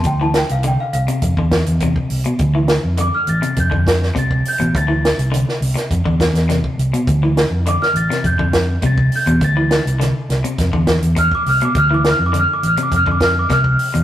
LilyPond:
<<
  \new Staff \with { instrumentName = "Celesta" } { \time 4/4 \key d \dorian \tempo 4 = 103 g''16 a''16 g''16 f''16 g''16 f''16 f''2~ f''8~ | f''8 r8 d'''16 f'''16 a'''8 g'''4 a'''8 g'''8 | a'''4 r2. | r4 d'''16 f'''16 a'''8 g'''4 a'''8 g'''8 |
a'''4 r2 f'''16 d'''16 f'''16 d'''16 | f'''16 d'''16 f'''16 d'''16 f'''16 d'''16 f'''16 d'''16 f'''16 d'''16 f'''16 d'''16 f'''4 | }
  \new Staff \with { instrumentName = "Clean electric guitar" } { \clef bass \time 4/4 \key d \dorian r16 e8 r16 d8 r16 c8 d8 r16 c8 r16 b,16 | r16 e8 r16 d8 r16 c8 d8 r16 c8 r16 b,16 | r16 e8 r16 d8 r8. d8 r16 c8 r16 b,16 | r16 e8 r16 d8 r16 c8 d8 r16 c8 r16 b,16 |
r16 e8 r16 d8 r16 c8 d8 r4 b,16 | r16 e8 r16 d8 r16 c8 d8 r16 c8 r16 b,16 | }
  \new Staff \with { instrumentName = "Fingered electric bass" } { \clef bass \time 4/4 \key d \dorian d,8. c,8 r16 c,16 r16 f,16 e,8 e,8 r16 c,16 r16 | d,8. f,8 r16 a,,16 r16 f,16 f,8. c,8 r16 a,,16 | d,8. c,8 r16 c,16 r16 f,16 e,8 e,8 r16 c,16 r16 | d,8. f,8 r16 a,,16 r16 f,16 f,8. c,8 r16 e,16 |
d,8. c,8 r16 c,16 r16 f,16 e,8 e,8 r16 c,16 r16 | d,8. f,8 r16 a,,16 r16 f,16 f,8. c,8 r16 e,16 | }
  \new DrumStaff \with { instrumentName = "Drums" } \drummode { \time 4/4 <hh bd>8 <hh sn>16 hh16 hh8 hh16 hh16 <hh bd>16 bd16 <hh bd sn>16 hh16 <hh bd>16 bd16 hho16 hh16 | <hh bd>8 <hh sn>8 hh8 hh16 hh16 <hh bd>16 bd16 <hh bd sn>16 sn16 <hh bd>16 bd16 hho16 hh16 | <hh bd>8 <hh sn>16 hh16 hh16 sn16 hho16 <hh sn>16 <hh bd>16 bd16 <hh bd sn>16 <hh sn>16 <hh sn>16 bd16 hh16 hh16 | <hh bd>8 <hh sn>8 hh16 sn16 hh16 <hh sn>16 <hh bd>16 bd16 <hh bd sn>8 <hh bd>16 bd16 hho16 hh16 |
<hh bd>8 <hh sn>16 hh16 <hh sn>8 <hh sn>16 hh16 <hh bd sn>16 bd16 <hh bd sn>16 hh16 <hh bd>16 bd16 hho16 hh16 | <hh bd>8 <hh sn>8 hh8 hh16 hh16 <hh bd>16 bd16 <hh bd sn>8 <hh bd sn>16 bd16 hho16 hh16 | }
>>